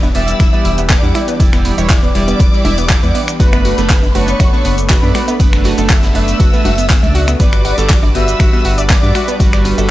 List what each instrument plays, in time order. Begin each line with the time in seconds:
Already playing: analog synth bass E1, supersaw synth E3 B3 D4 G4
0.03 synth pluck B3, high bongo, high conga, cabasa
0.15 analog synth bass E1, analog polysynth G3 E4 D5, synth pluck B3, analog synth lead E5, violin section E6, closed hi-hat, open hi-hat
0.28 closed hi-hat, cabasa
0.40 analog synth bass E1, synth pluck E4, finger snap, kick, closed hi-hat, ride, cabasa
0.53 analog polysynth G3 E4 D5, synth pluck B3, high bongo, cabasa
0.65 analog synth bass E1, synth pluck E4, closed hi-hat, open hi-hat
0.78 synth pluck B3, closed hi-hat, cabasa
0.90 synth pluck B3, analog synth lead D5, violin section D6, kick, snare, clap, closed hi-hat, ride, high bongo, cabasa
1.03 analog synth bass E2, analog polysynth G3 E4 F#5, high conga, cabasa
1.15 synth pluck E4, finger snap, closed hi-hat, open hi-hat, low conga
1.28 synth pluck B3, closed hi-hat, cabasa
1.40 analog synth bass E1, analog polysynth G3 E4 D5, synth pluck E4, kick, closed hi-hat, ride, high bongo, cabasa
1.53 synth pluck B3, finger snap, snare, cabasa
1.65 synth pluck B3, closed hi-hat, open hi-hat
1.78 analog synth bass E1, analog polysynth G3 E4 C#5, closed hi-hat, high bongo, cabasa
1.90 synth pluck E4, analog synth lead D5, violin section D6, kick, snare, clap, closed hi-hat, ride, cabasa
2.03 synth pluck B3, cabasa
2.15 analog synth bass E1, analog polysynth G3 E4 D5, synth pluck E4, snare, closed hi-hat, open hi-hat
2.28 synth pluck B3, closed hi-hat, high bongo, cabasa
2.39 analog synth bass E1, synth pluck B3, kick, closed hi-hat, ride, cabasa
2.53 analog polysynth G3 E4 D5, snare, cabasa
2.64 analog synth bass E1, synth pluck E4, open hi-hat, high bongo, high conga, low conga
2.78 synth pluck B3, closed hi-hat, cabasa
2.89 synth pluck E4, kick, snare, clap, closed hi-hat, ride, cabasa
3.03 analog synth bass E2, analog polysynth G3 E4 F#5, synth pluck B3, low conga, cabasa
3.15 synth pluck B3, closed hi-hat, open hi-hat, high bongo
3.28 finger snap, closed hi-hat, cabasa
3.40 analog synth bass F#1, supersaw synth A3, analog polysynth A3 D4 B4, synth pluck F#4, analog synth lead B4, violin section B5, kick, closed hi-hat, ride, cabasa
3.53 synth pluck B3, finger snap, closed hi-hat, high bongo, cabasa
3.65 synth pluck F#4, closed hi-hat, open hi-hat
3.78 analog synth bass F#1, analog polysynth A3 D4 A4, synth pluck B3, snare, closed hi-hat, cabasa
3.90 synth pluck B3, kick, snare, clap, closed hi-hat, ride, cabasa
4.03 high bongo, high conga, cabasa
4.15 analog synth bass F#1, analog polysynth A3 D4 B4, synth pluck F#4, analog synth lead C#5, violin section C#6, closed hi-hat, open hi-hat
4.28 synth pluck B3, closed hi-hat, cabasa
4.40 analog synth bass F#1, synth pluck F#4, finger snap, kick, closed hi-hat, ride, high bongo, cabasa
4.53 analog polysynth A3 D4 B4, synth pluck B3, cabasa
4.65 analog synth bass F#1, synth pluck B3, closed hi-hat, open hi-hat
4.78 closed hi-hat, cabasa
4.90 synth pluck F#4, analog synth lead B4, violin section B5, kick, snare, clap, closed hi-hat, ride, high bongo, cabasa
5.03 analog synth bass F#2, analog polysynth A3 D4 D5, synth pluck B3, high conga, cabasa
5.15 synth pluck F#4, finger snap, closed hi-hat, open hi-hat, low conga
5.28 synth pluck B3, closed hi-hat, high bongo, cabasa
5.40 analog synth bass F#1, analog polysynth A3 D4 B4, synth pluck B3, kick, closed hi-hat, ride, cabasa
5.53 finger snap, snare, cabasa
5.64 synth pluck F#4, snare, closed hi-hat, open hi-hat
5.78 analog synth bass F#1, analog polysynth A3 D4 A4, synth pluck B3, closed hi-hat, high bongo, cabasa
5.90 synth pluck F#4, analog synth lead E5, violin section E6, kick, clap, closed hi-hat, ride, cabasa
6.03 synth pluck B3, snare, closed hi-hat, cabasa
6.15 analog synth bass F#1, analog polysynth A3 D4 B4, synth pluck B3, open hi-hat, high bongo
6.28 closed hi-hat, cabasa
6.39 analog synth bass F#1, synth pluck F#4, kick, closed hi-hat, ride, cabasa
6.53 analog polysynth A3 D4 B4, synth pluck B3, snare, cabasa
6.65 analog synth bass F#1, synth pluck F#4, open hi-hat, high bongo, high conga, low conga
6.78 synth pluck B3, closed hi-hat, cabasa
6.90 synth pluck B3, kick, snare, clap, closed hi-hat, ride, cabasa
7.03 analog synth bass C#2, analog polysynth A3 D4 D5, high bongo, low conga, cabasa
7.15 synth pluck F#4, closed hi-hat, open hi-hat
7.28 synth pluck B3, finger snap, closed hi-hat, cabasa
7.40 analog synth bass G1, supersaw synth G3 F#4 B4, analog polysynth G3 F#4 B4, synth pluck B3, analog synth lead D5, violin section D6, kick, closed hi-hat, ride, cabasa
7.53 finger snap, closed hi-hat, cabasa
7.65 synth pluck F#4, closed hi-hat, open hi-hat, high bongo
7.78 analog synth bass G1, analog polysynth G3 F#4 A4, synth pluck B3, snare, closed hi-hat, cabasa
7.90 synth pluck F#4, kick, snare, clap, closed hi-hat, ride, cabasa
8.03 synth pluck D5, high bongo, high conga, cabasa
8.15 analog synth bass G1, analog polysynth G3 F#4 B4, synth pluck B3, analog synth lead E5, violin section E6, closed hi-hat, open hi-hat
8.28 closed hi-hat, cabasa
8.40 analog synth bass G1, synth pluck F#4, finger snap, kick, closed hi-hat, ride, cabasa
8.53 analog polysynth G3 F#4 B4, synth pluck B3, high bongo, cabasa
8.65 analog synth bass G1, synth pluck F#4, closed hi-hat, open hi-hat
8.78 synth pluck D5, closed hi-hat, cabasa
8.90 synth pluck B3, analog synth lead D5, violin section D6, kick, snare, clap, closed hi-hat, ride, high bongo, cabasa
9.03 analog synth bass G2, analog polysynth G3 F#4 E5, high conga, cabasa
9.15 synth pluck F#4, finger snap, closed hi-hat, open hi-hat, low conga
9.28 synth pluck B3, closed hi-hat, cabasa
9.40 analog synth bass G1, analog polysynth G3 F#4 B4, synth pluck F#4, kick, closed hi-hat, ride, high bongo, cabasa
9.53 synth pluck D5, finger snap, snare, cabasa
9.65 synth pluck B3, closed hi-hat, open hi-hat
9.78 analog synth bass G1, analog polysynth G3 F#4 A4, closed hi-hat, high bongo, cabasa